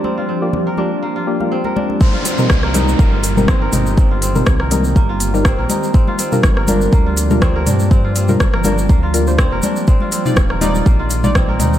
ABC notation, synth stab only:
X:1
M:4/4
L:1/16
Q:"Swing 16ths" 1/4=122
K:Cm
V:1 name="Synth stab"
[B,FGd]3 [B,FGd] z2 [B,FGd] z3 [B,FGd] [B,FGf] z4 | z3 [G,CEB] z2 [G,CEB]4- [G,CEB] [G,CEB]4- [G,CEB]- | [G,CEB]3 [G,CEB] z2 [G,CEB] z4 [G,CEB] z4 | z3 [G,DFB] z2 [G,DFB]4- [G,DFB] [G,DFB]4- [G,DFB]- |
[G,DFB]3 [G,DFB] z2 [G,DFB] z3 [G,DFB] [G,DFc] z4 | z3 [G,EFd] z2 [G,EFd]4- [G,EFd] [G,EFd]4- [G,EFd] |]